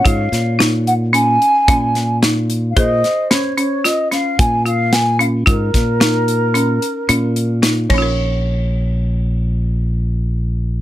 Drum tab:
CC |----------|----------|---------x|----------|
HH |xxxxxxxxxx|xxxxxxxxxx|xxxxxxxxx-|----------|
SD |-oo----oo-|-oo-oo--o-|-oo-----o-|----------|
BD |o-----o---|o-----o---|oo-------o|----------|